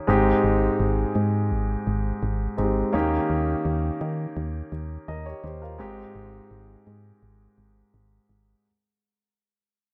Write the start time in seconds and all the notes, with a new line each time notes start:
0.07 G#1 G#2 G#3 C4 D#4 G4
0.44 G#1
0.80 G#1
1.16 G#2
1.51 G#1
1.87 G#1
2.23 G#1
2.57 G#1 G#3 C4 D#4 G4
2.92 D#2 D#3 A#3 C#4 D#4 G4
3.30 D#2
3.65 D#2
4.01 D#3
4.37 D#2
4.72 D#2
5.08 D#2 A#4 D#5
5.26 G4 C#5
5.44 D#2 G4 C5
5.62 F4 A#4
5.78 G#1 G#2 G#3 C4 D#4 G4
6.15 G#1
6.51 G#1
6.87 G#2
7.23 G#1
7.58 G#1
7.94 G#1
8.29 G#1